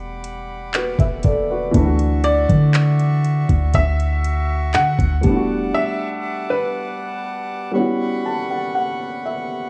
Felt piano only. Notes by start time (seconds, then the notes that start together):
Already playing: G3 A3 B3 D4 F#4
0.75 F#4 B4
1.00 B4 E5
1.25 A4 D5
1.50 F#4 B4
1.71 E3 A3
1.75 D4 E4
1.86 F#4
5.21 G3 A3
5.25 B3 D4 E4
5.36 F#4
7.71 G3 B3 C#4
7.77 E4 F#4
8.26 A5
8.51 F#5
8.75 F#5
9.26 E5